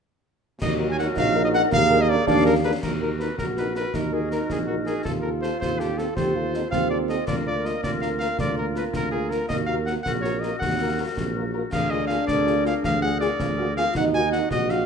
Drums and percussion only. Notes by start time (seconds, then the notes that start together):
0.62 concert bass drum, snare, crash
0.99 snare
1.17 concert bass drum, snare
1.54 snare
1.72 concert bass drum, snare
2.27 concert bass drum, snare
2.83 concert bass drum, snare, crash
3.20 snare
3.39 concert bass drum, snare
3.57 snare
3.75 snare
3.94 concert bass drum, snare
4.31 snare
4.50 concert bass drum, snare
4.87 snare
5.05 concert bass drum, snare
5.43 snare
5.62 concert bass drum, snare
5.80 snare
5.98 snare
6.17 concert bass drum, snare
6.54 snare
6.72 concert bass drum, snare
7.09 snare
7.28 concert bass drum, snare, crash
7.65 snare
7.84 concert bass drum, snare
8.02 snare
8.20 snare
8.39 concert bass drum, snare
8.76 snare
8.94 concert bass drum, snare
9.31 snare
9.50 concert bass drum, snare
9.87 snare
10.06 concert bass drum, snare
10.24 snare
10.43 snare
10.62 concert bass drum, snare
11.17 concert bass drum, snare
11.72 concert bass drum, snare, crash
12.10 snare
12.28 concert bass drum, snare
12.47 snare
12.65 snare
12.84 concert bass drum, snare
13.21 snare
13.40 concert bass drum, snare
13.77 snare
13.95 concert bass drum, snare
14.33 snare
14.51 concert bass drum, snare
14.69 snare